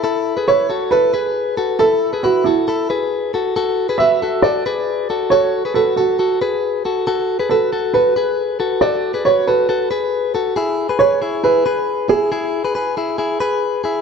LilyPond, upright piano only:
\new Staff \with { instrumentName = "Upright piano" } { \time 4/4 \key a \major \tempo 4 = 137 r4 cis''4 b'2 | a'4 fis'8 e'4 r4. | r4 e''4 d''2 | cis''4 a'8 fis'4 r4. |
r4 a'4 b'2 | d''4 cis''8 b'2 r8 | r4 cis''4 b'4. gis'8~ | gis'2. r4 | }